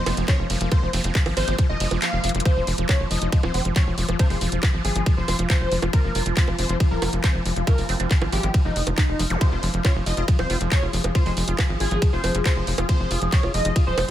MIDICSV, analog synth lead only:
0, 0, Header, 1, 2, 480
1, 0, Start_track
1, 0, Tempo, 434783
1, 790, Time_signature, 4, 2, 24, 8
1, 15574, End_track
2, 0, Start_track
2, 0, Title_t, "Analog synth lead"
2, 0, Program_c, 0, 81
2, 0, Note_on_c, 0, 72, 100
2, 142, Note_off_c, 0, 72, 0
2, 310, Note_on_c, 0, 73, 94
2, 438, Note_off_c, 0, 73, 0
2, 790, Note_on_c, 0, 72, 95
2, 982, Note_off_c, 0, 72, 0
2, 1510, Note_on_c, 0, 72, 98
2, 1702, Note_off_c, 0, 72, 0
2, 1870, Note_on_c, 0, 75, 98
2, 2062, Note_off_c, 0, 75, 0
2, 2230, Note_on_c, 0, 77, 103
2, 2486, Note_off_c, 0, 77, 0
2, 2710, Note_on_c, 0, 72, 98
2, 2966, Note_off_c, 0, 72, 0
2, 3191, Note_on_c, 0, 73, 88
2, 3319, Note_off_c, 0, 73, 0
2, 3431, Note_on_c, 0, 75, 98
2, 3623, Note_off_c, 0, 75, 0
2, 3790, Note_on_c, 0, 72, 97
2, 3982, Note_off_c, 0, 72, 0
2, 4150, Note_on_c, 0, 73, 97
2, 4278, Note_off_c, 0, 73, 0
2, 4630, Note_on_c, 0, 72, 92
2, 4822, Note_off_c, 0, 72, 0
2, 5350, Note_on_c, 0, 68, 98
2, 5542, Note_off_c, 0, 68, 0
2, 5710, Note_on_c, 0, 72, 98
2, 5902, Note_off_c, 0, 72, 0
2, 6070, Note_on_c, 0, 72, 100
2, 6326, Note_off_c, 0, 72, 0
2, 6550, Note_on_c, 0, 70, 99
2, 6806, Note_off_c, 0, 70, 0
2, 7029, Note_on_c, 0, 72, 93
2, 7158, Note_off_c, 0, 72, 0
2, 7270, Note_on_c, 0, 72, 99
2, 7462, Note_off_c, 0, 72, 0
2, 7630, Note_on_c, 0, 70, 96
2, 7822, Note_off_c, 0, 70, 0
2, 7990, Note_on_c, 0, 72, 92
2, 8118, Note_off_c, 0, 72, 0
2, 8470, Note_on_c, 0, 70, 94
2, 8662, Note_off_c, 0, 70, 0
2, 9190, Note_on_c, 0, 67, 93
2, 9382, Note_off_c, 0, 67, 0
2, 9550, Note_on_c, 0, 63, 97
2, 9742, Note_off_c, 0, 63, 0
2, 9910, Note_on_c, 0, 63, 100
2, 10166, Note_off_c, 0, 63, 0
2, 10390, Note_on_c, 0, 72, 98
2, 10646, Note_off_c, 0, 72, 0
2, 10870, Note_on_c, 0, 73, 88
2, 10998, Note_off_c, 0, 73, 0
2, 11110, Note_on_c, 0, 75, 101
2, 11302, Note_off_c, 0, 75, 0
2, 11470, Note_on_c, 0, 72, 100
2, 11662, Note_off_c, 0, 72, 0
2, 11830, Note_on_c, 0, 73, 94
2, 11958, Note_off_c, 0, 73, 0
2, 12310, Note_on_c, 0, 72, 89
2, 12502, Note_off_c, 0, 72, 0
2, 13030, Note_on_c, 0, 68, 99
2, 13222, Note_off_c, 0, 68, 0
2, 13390, Note_on_c, 0, 72, 93
2, 13582, Note_off_c, 0, 72, 0
2, 13751, Note_on_c, 0, 72, 99
2, 14007, Note_off_c, 0, 72, 0
2, 14230, Note_on_c, 0, 72, 97
2, 14486, Note_off_c, 0, 72, 0
2, 14710, Note_on_c, 0, 73, 91
2, 14838, Note_off_c, 0, 73, 0
2, 14950, Note_on_c, 0, 75, 101
2, 15142, Note_off_c, 0, 75, 0
2, 15310, Note_on_c, 0, 72, 96
2, 15502, Note_off_c, 0, 72, 0
2, 15574, End_track
0, 0, End_of_file